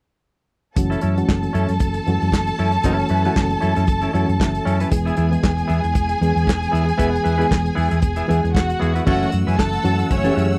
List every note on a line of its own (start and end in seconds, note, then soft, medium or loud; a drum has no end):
0.76 0.95 F#1 medium
0.76 1.06 E3 medium
0.76 1.06 A3 medium
0.76 1.07 C#4 medium
0.76 1.07 F#4 medium
0.76 4.88 A4 medium
0.76 4.88 A5 medium
0.76 muted clean electric guitar stroke soft
0.76 kick loud
0.76 closed hi-hat medium
0.90 1.00 C#4 medium
0.90 1.01 E4 medium
0.90 1.02 A4 medium
0.90 closed hi-hat soft
1.01 1.21 F#2 medium
1.01 1.17 C#4 medium
1.01 1.16 E4 medium
1.01 1.15 A4 medium
1.01 closed hi-hat medium
1.16 1.83 E3 medium
1.16 1.23 G#3 medium
1.16 1.84 C#4 medium
1.16 1.84 F#4 medium
1.16 muted clean electric guitar stroke soft
1.16 closed hi-hat soft
1.23 1.87 A3 medium
1.28 1.46 F#1 medium
1.28 muted clean electric guitar stroke soft
1.28 kick medium
1.28 snare loud
1.28 clap medium
1.43 muted clean electric guitar stroke soft
1.43 closed hi-hat soft
1.53 1.65 F#2 loud
1.53 1.71 C#4 medium
1.53 1.68 E4 medium
1.53 1.67 A4 medium
1.53 closed hi-hat medium
1.69 1.77 F#2 medium
1.69 muted clean electric guitar stroke soft
1.69 snare soft
1.69 closed hi-hat soft
1.79 1.98 F#1 medium
1.79 muted clean electric guitar stroke soft
1.79 kick loud
1.79 closed hi-hat medium
1.94 muted clean electric guitar stroke soft
1.94 closed hi-hat soft
2.07 2.17 F#2 medium
2.07 2.65 E3 medium
2.07 2.14 G#3 medium
2.07 2.66 C#4 medium
2.07 2.66 F#4 medium
2.07 closed hi-hat medium
2.13 2.69 A3 medium
2.21 2.30 F#2 medium
2.21 muted clean electric guitar stroke soft
2.21 closed hi-hat soft
2.32 2.50 F#1 medium
2.32 kick medium
2.32 snare loud
2.32 clap medium
2.47 muted clean electric guitar stroke soft
2.47 closed hi-hat soft
2.59 2.77 F#2 medium
2.59 2.76 C#4 medium
2.59 2.73 E4 medium
2.59 2.72 A4 medium
2.59 closed hi-hat medium
2.72 muted clean electric guitar stroke soft
2.72 closed hi-hat medium
2.83 3.02 F#1 loud
2.83 3.14 E3 medium
2.83 3.14 A3 medium
2.83 3.05 C#4 medium
2.83 3.14 C#4 medium
2.83 2.99 E4 medium
2.83 3.14 F#4 medium
2.83 2.98 B4 medium
2.83 kick loud
2.83 closed hi-hat medium
2.99 muted clean electric guitar stroke soft
2.99 closed hi-hat soft
3.09 3.28 F#2 medium
3.09 3.25 C#4 medium
3.09 3.25 E4 medium
3.09 3.24 B4 medium
3.09 closed hi-hat medium
3.25 3.91 E3 medium
3.25 3.31 G#3 medium
3.25 3.92 C#4 medium
3.25 3.35 C#4 soft
3.25 3.36 E4 medium
3.25 3.92 F#4 medium
3.25 3.37 B4 medium
3.25 closed hi-hat soft
3.31 3.94 A3 medium
3.36 3.54 F#1 medium
3.36 kick loud
3.36 snare medium
3.36 clap medium
3.50 muted clean electric guitar stroke soft
3.50 closed hi-hat soft
3.61 3.72 F#2 medium
3.61 3.75 C#4 medium
3.61 3.75 E4 medium
3.61 3.74 A4 medium
3.61 closed hi-hat medium
3.75 3.85 F#2 medium
3.75 3.86 C#4 soft
3.75 3.86 E4 medium
3.75 3.86 A4 medium
3.75 snare soft
3.75 closed hi-hat soft
3.87 4.06 F#1 medium
3.87 kick loud
3.87 closed hi-hat medium
4.02 4.12 C#4 medium
4.02 4.13 E4 medium
4.02 4.13 A4 medium
4.02 closed hi-hat soft
4.13 4.24 F#2 medium
4.13 4.72 E3 medium
4.13 4.73 A3 medium
4.13 4.29 C#4 medium
4.13 4.73 C#4 medium
4.13 4.28 E4 medium
4.13 4.73 F#4 medium
4.13 4.27 A4 medium
4.13 4.38 C#5 medium
4.13 closed hi-hat medium
4.28 4.37 F#2 medium
4.28 muted clean electric guitar stroke soft
4.28 closed hi-hat soft
4.40 4.58 F#1 medium
4.40 4.64 E5 medium
4.40 muted clean electric guitar stroke soft
4.40 kick loud
4.40 snare loud
4.40 clap medium
4.53 muted clean electric guitar stroke soft
4.53 closed hi-hat soft
4.65 4.84 F#2 medium
4.65 4.81 C#4 medium
4.65 4.80 E4 medium
4.65 4.80 A4 medium
4.65 4.90 G#5 medium
4.65 closed hi-hat medium
4.80 4.91 C#4 soft
4.80 4.91 E4 medium
4.80 4.92 B4 medium
4.80 closed hi-hat medium
4.91 5.09 E1 loud
4.91 5.21 E3 medium
4.91 5.21 G#3 medium
4.91 5.21 B3 medium
4.91 8.51 G#4 medium
4.91 5.21 G#4 medium
4.91 8.50 G#5 loud
4.91 kick loud
4.91 closed hi-hat medium
5.05 5.16 B3 medium
5.05 5.16 E4 medium
5.05 5.17 G#4 medium
5.05 closed hi-hat soft
5.17 5.35 E2 medium
5.17 5.33 B3 medium
5.17 5.31 E4 medium
5.17 5.31 G#4 medium
5.17 closed hi-hat medium
5.32 5.98 E3 medium
5.32 5.98 G#3 medium
5.32 5.99 B3 medium
5.32 5.99 E4 medium
5.32 muted clean electric guitar stroke soft
5.32 closed hi-hat soft
5.43 5.61 E1 medium
5.43 muted clean electric guitar stroke soft
5.43 kick loud
5.43 snare loud
5.43 clap medium
5.57 muted clean electric guitar stroke soft
5.57 closed hi-hat soft
5.67 5.79 E2 medium
5.67 5.86 B3 medium
5.67 5.82 E4 medium
5.67 5.81 G#4 medium
5.67 closed hi-hat medium
5.82 5.92 E2 medium
5.82 muted clean electric guitar stroke soft
5.82 closed hi-hat soft
5.93 6.13 E1 medium
5.93 muted clean electric guitar stroke soft
5.93 kick loud
5.93 closed hi-hat medium
6.08 muted clean electric guitar stroke soft
6.08 closed hi-hat soft
6.21 6.31 E2 loud
6.21 6.80 E3 medium
6.21 6.80 G#3 medium
6.21 6.80 B3 medium
6.21 6.81 G#4 medium
6.21 closed hi-hat medium
6.34 6.44 E2 medium
6.34 muted clean electric guitar stroke soft
6.34 closed hi-hat soft
6.47 6.65 E1 medium
6.47 kick loud
6.47 snare loud
6.47 clap medium
6.60 muted clean electric guitar stroke soft
6.60 closed hi-hat soft
6.71 6.91 E2 medium
6.71 6.90 B3 medium
6.71 6.86 E4 medium
6.71 6.86 G#4 medium
6.71 closed hi-hat medium
6.87 muted clean electric guitar stroke soft
6.87 closed hi-hat medium
6.98 7.17 E1 loud
6.98 7.28 E3 medium
6.98 7.28 G#3 medium
6.98 7.16 B3 medium
6.98 7.28 B3 medium
6.98 7.11 E4 loud
6.98 7.29 G#4 medium
6.98 7.11 B4 loud
6.98 kick loud
6.98 closed hi-hat medium
7.12 muted clean electric guitar stroke soft
7.12 closed hi-hat soft
7.23 7.43 E2 medium
7.23 7.38 B3 medium
7.23 7.37 E4 medium
7.23 7.36 B4 medium
7.23 closed hi-hat medium
7.38 8.05 E3 medium
7.38 8.06 G#3 medium
7.38 7.48 B3 medium
7.38 8.06 B3 medium
7.38 7.48 E4 medium
7.38 8.06 G#4 medium
7.38 7.49 B4 medium
7.38 closed hi-hat soft
7.49 7.69 E1 medium
7.49 muted clean electric guitar stroke soft
7.49 kick medium
7.49 snare loud
7.49 clap medium
7.64 muted clean electric guitar stroke soft
7.64 closed hi-hat soft
7.75 7.87 E2 medium
7.75 7.90 B3 medium
7.75 7.90 E4 medium
7.75 7.89 G#4 medium
7.75 open hi-hat medium
7.91 7.99 E2 loud
7.91 8.00 B3 soft
7.91 8.01 E4 medium
7.91 8.02 G#4 medium
7.91 snare soft
7.91 closed hi-hat soft
8.02 8.20 E1 loud
8.02 kick loud
8.02 closed hi-hat medium
8.16 8.27 B3 medium
8.16 8.28 E4 medium
8.16 8.28 G#4 medium
8.16 closed hi-hat soft
8.28 8.39 E2 loud
8.28 8.87 E3 medium
8.28 8.87 G#3 medium
8.28 8.44 B3 medium
8.28 8.88 B3 medium
8.28 8.42 E4 medium
8.28 8.41 G#4 medium
8.28 8.88 G#4 medium
8.28 closed hi-hat medium
8.43 8.52 E2 medium
8.43 muted clean electric guitar stroke soft
8.43 closed hi-hat soft
8.54 8.73 E1 medium
8.54 9.05 F#4 medium
8.54 9.05 F#5 medium
8.54 muted clean electric guitar stroke soft
8.54 kick loud
8.54 snare loud
8.54 clap medium
8.69 muted clean electric guitar stroke soft
8.69 closed hi-hat soft
8.79 8.99 E2 medium
8.79 8.95 B3 medium
8.79 8.95 E4 medium
8.79 8.95 G#4 medium
8.79 closed hi-hat medium
8.95 9.06 B3 medium
8.95 9.06 E4 medium
8.95 9.07 B4 medium
8.95 closed hi-hat medium
9.06 9.24 F#1 loud
9.06 9.65 E3 medium
9.06 9.65 A3 medium
9.06 10.59 A3 medium
9.06 9.31 C#4 medium
9.06 9.65 C#4 medium
9.06 9.31 E4 medium
9.06 9.27 F#4 loud
9.06 9.65 F#4 medium
9.06 9.31 A4 medium
9.06 9.27 F#5 loud
9.06 10.59 F#5 medium
9.06 10.59 E6 medium
9.06 kick loud
9.06 crash medium
9.23 closed hi-hat soft
9.32 9.43 F#2 medium
9.32 closed hi-hat medium
9.47 9.55 F#2 medium
9.47 9.57 C#4 medium
9.47 9.57 E4 medium
9.47 9.56 G#4 medium
9.47 9.58 B4 medium
9.47 9.57 G#5 medium
9.47 closed hi-hat soft
9.58 9.77 F#1 medium
9.58 10.07 A4 loud
9.58 10.07 A5 loud
9.58 kick medium
9.58 snare medium
9.58 clap medium
9.73 muted clean electric guitar stroke soft
9.73 closed hi-hat soft
9.84 10.02 F#2 loud
9.84 10.13 E3 medium
9.84 10.14 A3 medium
9.84 10.14 C#4 medium
9.84 10.14 F#4 medium
9.84 closed hi-hat medium
9.99 muted clean electric guitar stroke medium
9.99 snare soft
9.99 closed hi-hat soft
10.10 10.29 F#1 medium
10.10 10.59 C#4 medium
10.10 10.59 C#5 loud
10.10 muted clean electric guitar stroke soft
10.10 kick loud
10.10 closed hi-hat medium
10.24 10.59 E3 medium
10.24 10.59 A3 medium
10.24 10.59 C#4 medium
10.24 10.35 C#4 medium
10.24 10.36 E4 medium
10.24 10.31 G4 medium
10.24 10.36 A4 medium
10.24 closed hi-hat soft
10.32 10.51 C#4 medium
10.32 10.59 G#4 loud
10.37 10.54 F#2 medium
10.37 10.50 E4 medium
10.37 10.49 A4 medium
10.37 closed hi-hat medium
10.50 muted clean electric guitar stroke soft
10.50 closed hi-hat soft